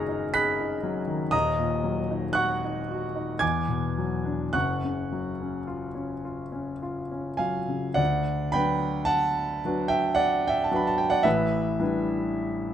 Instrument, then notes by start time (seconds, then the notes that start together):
grand piano
Already playing: F#1 F#2 D#3 F#3 D#4 G#4 F#5 A#5 C#6 F6 F#6 A#6
0.09 D#4
0.34 G#4 B5 F#6 B6
0.60 D#4
0.83 F#3
1.07 D#3
1.31 D#1 D#2 D#5 A#5 D#6
1.59 A#2
1.84 F#3
2.11 D#4
2.33 F#4 F#5 C#6 F#6
2.64 D#4
2.91 F#4
3.16 D#4
3.39 E2 G#5 D6 G#6
3.68 B2
3.98 F#3
4.25 D4
4.53 F#1 F#2 F#5 C#6 F#6
4.84 C#3
5.12 F#3
5.41 C#4
5.67 F4
5.95 C#4
6.25 F4
6.52 C#4
6.83 F4
7.11 C#4
7.37 F#3 F5 G#5
7.68 C#3
7.94 D2 D5 F#5
8.52 F#3 D4 F#4 B4 G5 B5
9.05 F#5 A5
9.65 F#3 D4 F#4 B4
9.88 E5 G5
10.15 D5 F#5
10.48 E5 G5
10.64 A5
10.71 F#3 D4 F#4 B4
10.76 B5
10.87 A5
10.98 G5
11.10 D5 F#5
11.23 A1 A2 B4 E5
11.80 G3 D4 E4 B4